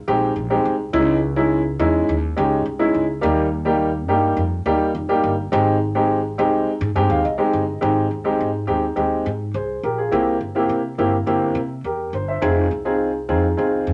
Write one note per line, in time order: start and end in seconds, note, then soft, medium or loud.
0.08 0.32 A#1 medium
0.08 0.31 G#3 medium
0.08 0.31 C4 medium
0.08 0.31 D#4 medium
0.08 0.31 G4 loud
0.36 0.60 A#1 medium
0.50 0.74 G#3 medium
0.50 0.74 C4 medium
0.50 0.73 D#4 medium
0.50 0.74 G4 medium
0.65 0.89 C2 medium
0.93 1.75 C#2 loud
0.93 1.16 G#3 medium
0.93 1.17 C#4 medium
0.93 1.17 D#4 medium
0.93 1.17 E4 loud
1.36 1.60 G#3 medium
1.36 1.59 C#4 medium
1.36 1.60 D#4 medium
1.36 1.60 E4 medium
1.79 2.03 E2 medium
1.79 2.10 G#3 medium
1.79 2.11 C#4 medium
1.79 2.10 D#4 medium
1.79 2.10 E4 medium
2.09 2.32 D#2 medium
2.36 2.61 C#2 medium
2.36 2.60 G#3 medium
2.36 2.60 C#4 medium
2.36 2.60 D#4 medium
2.36 2.60 G4 medium
2.66 2.89 C2 medium
2.79 3.03 G#3 medium
2.79 3.03 C#4 medium
2.79 3.03 D#4 medium
2.79 3.03 E4 medium
2.94 3.18 C#2 medium
3.21 4.09 D#2 loud
3.21 3.45 G3 medium
3.21 3.45 A#3 medium
3.21 3.45 D#4 medium
3.21 3.45 G4 loud
3.65 3.89 G3 medium
3.65 3.89 A#3 medium
3.65 3.89 D#4 medium
3.65 3.89 G4 medium
4.08 4.33 G2 medium
4.08 4.39 G3 medium
4.08 4.39 A#3 medium
4.08 4.39 D#4 medium
4.08 4.40 G4 medium
4.37 4.61 F2 medium
4.66 4.96 D#2 medium
4.66 4.89 G3 medium
4.66 4.89 A#3 medium
4.66 4.89 D#4 medium
4.66 4.89 G4 loud
4.95 5.19 F1 medium
5.09 5.32 G3 medium
5.09 5.32 A#3 medium
5.09 5.32 D#4 medium
5.09 5.32 G4 medium
5.24 5.47 G1 medium
5.52 6.35 G#1 loud
5.52 5.75 G#3 medium
5.52 5.75 C4 medium
5.52 5.75 D#4 medium
5.52 5.75 G4 loud
5.95 6.18 G#3 medium
5.95 6.18 C4 medium
5.95 6.18 D#4 medium
5.95 6.18 G4 medium
6.38 6.63 C2 loud
6.38 6.69 G#3 medium
6.38 6.69 C4 medium
6.38 6.69 D#4 medium
6.38 6.69 G4 medium
6.81 6.93 G#2 loud
6.95 7.08 G2 medium
6.95 7.19 G#3 medium
6.95 7.19 C4 medium
6.95 7.19 D#4 medium
6.95 7.19 G4 loud
6.95 7.09 G#5 medium
7.10 7.22 D#2 medium
7.10 7.24 F5 medium
7.24 7.37 C2 medium
7.24 7.78 D#5 medium
7.38 7.62 G#3 medium
7.38 7.62 C4 medium
7.38 7.62 D#4 medium
7.38 7.62 G4 medium
7.53 7.77 G1 medium
7.81 8.06 G#1 medium
7.81 8.05 G#3 medium
7.81 8.05 C4 medium
7.81 8.05 D#4 medium
7.81 8.05 G4 medium
8.11 8.35 D#2 medium
8.24 8.48 G#3 medium
8.24 8.48 C4 medium
8.24 8.48 D#4 medium
8.24 8.48 G4 medium
8.41 8.64 G#2 medium
8.67 8.92 D#2 medium
8.67 8.83 G#3 medium
8.67 8.83 C4 medium
8.67 8.84 D#4 medium
8.67 8.83 G4 medium
8.96 9.21 D#2 medium
8.96 9.28 G#3 medium
8.96 9.28 C4 medium
8.96 9.28 D#4 medium
8.96 9.28 G4 medium
9.26 9.50 G#2 medium
9.54 9.79 C2 medium
9.54 9.82 G#4 soft
9.54 9.82 C5 medium
9.83 10.08 A#1 medium
9.83 9.98 G4 medium
9.83 9.97 A#4 medium
9.98 10.26 F4 medium
9.98 10.26 G#4 medium
10.11 10.36 C2 medium
10.11 10.35 A#3 medium
10.11 10.35 C4 medium
10.11 10.35 E4 medium
10.11 10.35 G4 medium
10.41 10.65 G1 medium
10.55 10.79 A#3 medium
10.55 10.79 C4 medium
10.55 10.79 E4 medium
10.55 10.79 G4 medium
10.69 10.94 C3 medium
10.98 11.23 G1 medium
10.98 11.14 A#3 medium
10.98 11.14 C4 medium
10.98 11.14 E4 medium
10.98 11.14 G4 medium
11.26 11.51 G1 medium
11.26 11.58 A#3 medium
11.26 11.58 C4 medium
11.26 11.58 E4 medium
11.26 11.56 G4 medium
11.55 11.80 C3 loud
11.84 12.09 E2 medium
11.84 12.13 G4 medium
11.84 12.13 A#4 medium
12.13 12.38 G1 medium
12.13 12.27 C5 medium
12.28 12.56 C5 medium
12.28 12.56 E5 medium
12.41 12.67 F1 loud
12.41 12.66 C4 medium
12.41 12.66 D#4 medium
12.41 12.66 F4 medium
12.41 12.66 G#4 medium
12.71 13.30 C2 medium
12.85 13.09 C4 medium
12.85 13.09 D#4 medium
12.85 13.09 F4 medium
12.85 13.09 G#4 medium
13.29 13.53 F2 medium
13.29 13.45 C4 medium
13.29 13.45 D#4 medium
13.29 13.45 F4 medium
13.29 13.45 G#4 medium
13.57 13.82 C2 medium
13.57 13.89 C4 medium
13.57 13.89 D#4 medium
13.57 13.89 F4 medium
13.57 13.89 G#4 medium
13.87 13.93 F2 loud